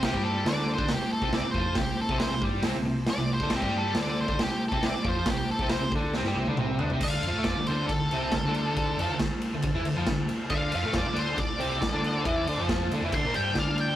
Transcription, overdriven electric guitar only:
\new Staff \with { instrumentName = "Overdriven electric guitar" } { \clef bass \time 4/4 \key d \minor \tempo 4 = 138 <c c'>16 <g g'>8. <d d'>8. <d d'>16 c16 r8 <c c'>8 r16 <f f'>8 | c8 r16 <c c'>8 c16 <g g'>8 <c c'>16 c16 c8 r16 c8 <d d'>16 | <c c'>16 <g g'>8. <d d'>8. <d d'>16 c16 r8 <c c'>8 r16 <f f'>8 | c8 r16 <c c'>8 c16 <d d'>8 <c c'>16 <g g'>16 <c c'>16 <d d'>16 <c c'>8 <d d'>16 <c c'>16 |
<d d'>8 <f f'>16 <a a'>16 <f f'>16 d16 <d d'>8 d8 <c c'>8 d16 <d d'>8.~ | <d d'>8 <f f'>16 d8 r8 d16 d16 <e e'>16 d16 <f f'>16 d8 r8 | <d d'>8 <f f'>16 <a a'>16 <f f'>16 d16 <d d'>8 d8 <c c'>8 d16 <d d'>8. | <e e'>8 <d d'>16 <f f'>8. <d d'>16 <e e'>16 <d d'>16 <bes bes'>16 <g g'>8 <d' d''>4 | }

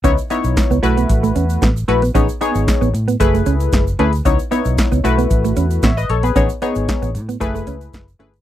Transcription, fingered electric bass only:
\new Staff \with { instrumentName = "Fingered electric bass" } { \clef bass \time 4/4 \key fis \dorian \tempo 4 = 114 cis,16 r8 b,,16 r16 cis,16 b,,8 a,,8 e,8 a,,8 ais,,8 | a,,16 r8 gis,,16 r16 a,,16 a,8 fis,,8 cis,8 fis,,8 d,8 | cis,16 r8 b,,16 r16 cis,16 b,,8 a,,8 e,8 a,,8 ais,,8 | a,,16 r8 gis,,16 r16 a,,16 a,8 fis,,8 cis,8 fis,,8 g,,8 | }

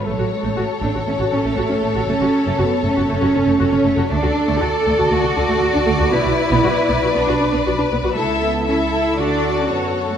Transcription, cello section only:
\new Staff \with { instrumentName = "Cello section" } { \time 4/4 \key fis \minor \tempo 4 = 118 fis8 gis8 a8 d'8 cis'8 cis'8 a4 | cis'4 b8 cis'8 cis'4 cis'4 | \key d \lydian d'4 a'4 fis'2 | e'2 d'4 r4 |
a8 b8 cis'8 e'8 d'8. cis'16 b8. a16 | }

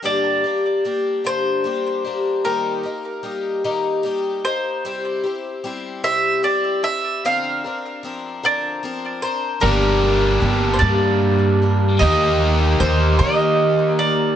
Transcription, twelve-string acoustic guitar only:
\new Staff \with { instrumentName = "Twelve-string acoustic guitar" } { \time 6/8 \key g \minor \tempo 4. = 50 <g, d g bes d' g'>8 <g bes d' g'>8 <g bes d' g'>8 <g, d g bes d' g'>8 <g bes d' g'>8 <g bes d' g'>8 | <ees g bes ees' g'>8 <bes ees' g'>8 <g bes ees' g'>8 <ees g bes ees' g'>8 <g bes ees' g'>8 <bes ees' g'>8 | <c g c' e' g'>8 <c' e' g'>8 <g c' e' g'>8 <c g c' e' g'>8 <g c' e' g'>8 <c' e' g'>8 | <d f c' d' bes'>8 <c' d' bes'>8 <f c' d' bes'>8 <d f c' d' bes'>8 <f c' d' bes'>8 <c' d' bes'>8 |
<g, d g bes d' g'>4 <g bes d' g'>8 <g, d g bes d' g'>4 <g bes d' g'>8 | <ees g bes ees' g'>4 <g bes ees' g'>8 <ees g bes ees' g'>4 <bes ees' g'>8 | }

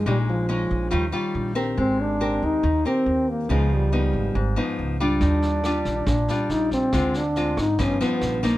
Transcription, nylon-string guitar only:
\new Staff \with { instrumentName = "Nylon-string guitar" } { \time 4/4 \key ees \major \tempo 4 = 140 << { <aes des' ees'>4 <aes des' ees'>4 <g des' f'>8 <g des' f'>4 <c' g' bes'>8~ | <c' g' bes'>4 <c' g' bes'>4 r8 <c' g' bes'>4. | <f ces' ees'>4 <f ces' ees'>4 r8 <f ces' ees'>4 <g d' f'>8~ | <g d' f'>4 <g d' f'>4 r8 <g d' f'>4. |
<aes c' f'>8 r8 <aes c' f'>8 r8 <f b dis'>8 <f b dis'>4 <f ais dis'>8 | } \\ { bes,2 ees2 | aes2 ees2 | des2 aes,2 | ees2 bes,2 |
d2 g,2 | } >> }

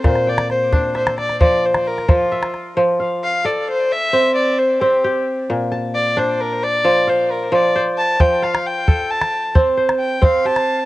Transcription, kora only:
<<
  \new Staff \with { instrumentName = "Kora" } { \time 12/8 \key f \major \tempo 4. = 88 bes'8 g''4. e''4. r4. e''4~ | e''8 f''4. r2. g'4~ | g'8 a''4. r4. f''4. c''4~ | c''8 f''4. r4. c''4. g'4 | }
  \new Staff \with { instrumentName = "Kora" } { \clef bass \time 12/8 \key f \major bes,4 r8 d'4 r8 f4 r8 f4 r8 | f4 r8 a'4 r8 c'4 r8 c'4 r8 | bes,4 r8 d'4 r8 f4 r8 f4 r8 | f4 r8 a'4 r8 c'4 r8 c'4 r8 | }
>>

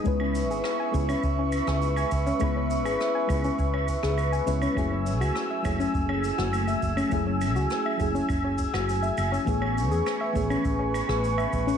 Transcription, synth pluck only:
\new Staff \with { instrumentName = "Synth pluck" } { \time 4/4 \key cis \minor \tempo 4 = 102 r16 cis'16 r16 gis'16 r16 gis''16 r16 cis'16 r16 cis'16 r16 gis'16 r16 gis''16 r16 cis'16 | r16 cis'16 r16 gis'16 r16 gis''16 r16 cis'16 r16 cis'16 r16 gis'16 r16 gis''16 r16 cis'16 | r16 cis'16 r16 fis'16 r16 e''16 r16 cis'16 r16 cis'16 r16 fis'16 r16 e''16 r16 cis'16 | r16 cis'16 r16 fis'16 r16 e''16 r16 cis'16 r16 cis'16 r16 fis'16 r16 e''16 r16 cis'16 |
r16 cis'16 r16 gis'16 r16 e''16 r16 cis'16 r16 cis'16 r16 gis'16 r16 e''16 r16 cis'16 | }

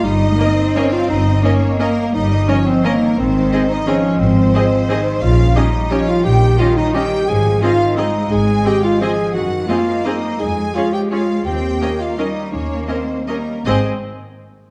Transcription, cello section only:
\new Staff \with { instrumentName = "Cello section" } { \clef bass \time 3/4 \key aes \major \tempo 4 = 171 g4 c'2~ | c'4 bes2 | g4 f4 ees4 | ees2 f4~ |
f2 ees4 | des4 g4 f4 | ees2. | f4 ees4 aes4~ |
aes2 f4 | ees4 bes2 | aes4 aes2 | c'4 bes4 g4 |
bes2 g8 r8 | aes,8 r2 r8 | }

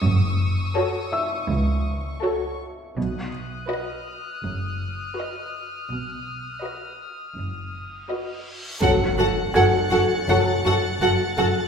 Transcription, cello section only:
\new Staff \with { instrumentName = "Cello section" } { \clef bass \time 4/4 \key fis \dorian \tempo 4 = 82 fis,4 r4 cis,4 r4 | b,4 r4 fis,4 r4 | b,4 r4 fis,4 r4 | fis,8 fis,8 fis,8 fis,8 fis,8 fis,8 fis,8 fis,8 | }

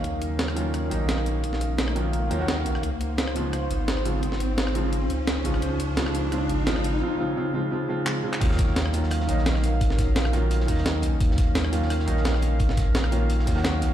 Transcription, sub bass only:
\new Staff \with { instrumentName = "Sub bass" } { \clef bass \time 4/4 \key ees \dorian \tempo 4 = 172 ees,2~ ees,8 bes,,4.~ | bes,,2~ bes,,8 ees,4 bes,,8 | des,2~ des,8 aes,,4.~ | aes,,2~ aes,,8 des,4 aes,,8 |
des,2~ des,8 aes,,4. | r1 | ees,2~ ees,8 bes,,4.~ | bes,,2~ bes,,8 ees,4 bes,,8 |
ees,2~ ees,8 bes,,4.~ | bes,,2~ bes,,8 ees,4 bes,,8 | }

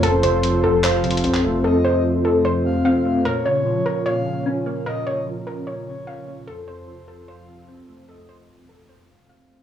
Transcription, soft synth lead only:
\new Staff \with { instrumentName = "Soft synth lead" } { \time 4/4 \key f \phrygian \tempo 4 = 149 c''2 f''4 r4 | ees''4 r4. f''4. | des''2 f''4 r4 | ees''4 r4. des''4. |
c''2 f''4 r4 | ees''4 r4. f''4. | }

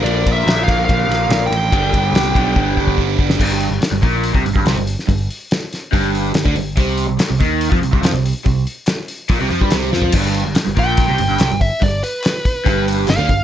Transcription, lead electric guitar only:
\new Staff \with { instrumentName = "Lead electric guitar" } { \time 4/4 \key c \major \tempo 4 = 143 d''8. e''8. f''8 f''4. g''8~ | g''2. r4 | r1 | r1 |
r1 | r1 | r4. g''2 e''8 | d''8 b'2 r8 f''4 | }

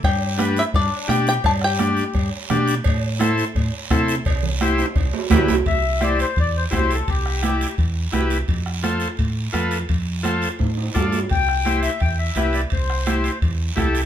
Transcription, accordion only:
\new Staff \with { instrumentName = "Accordion" } { \time 4/4 \key c \major \tempo 4 = 170 g'4 r8 e'8 d'4 g'8 g'8 | d''8 g'2 r4. | r1 | r1 |
e''4 d''8 c''8 d''8 c''8 c''8 a'8 | g'2 r2 | r1 | r1 |
g''4. e''8 g''8 e''8 e''8 d''8 | c''2 r2 | }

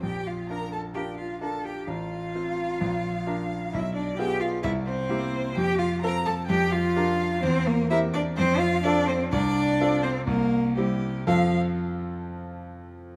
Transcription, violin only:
\new Staff \with { instrumentName = "Violin" } { \time 4/4 \key f \major \tempo 4 = 128 g''8 f''8 bes''8 a''8 g''8 f''8 a''8 g''8 | f''1 | e''8 d''8 g''8 f''8 e''8 c''4. | g''8 f''8 bes''8 a''8 g''8 f''4. |
c''8 bes'8 e''8 d''8 c''8 f''8 d''8 c''8 | d''4. c''8 bes'4 g'4 | f''8 r2. r8 | }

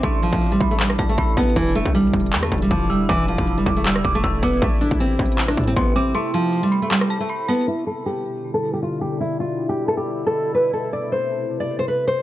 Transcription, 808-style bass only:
\new Staff \with { instrumentName = "808-style bass" } { \clef bass \time 4/4 \key e \phrygian \tempo 4 = 157 a,,8. a,,8. a,,4 a,,8 a,,8 a,,8 | e,,8. b,,8. e,,8 e,8 e,,8 e,,4 | e,,8. e,,8 f,,16 e,,4 e,,8 e,,8 e,,8 | a,,8. a,,8. a,,4 a,8 a,,4 |
r1 | r1 | r1 | r1 | }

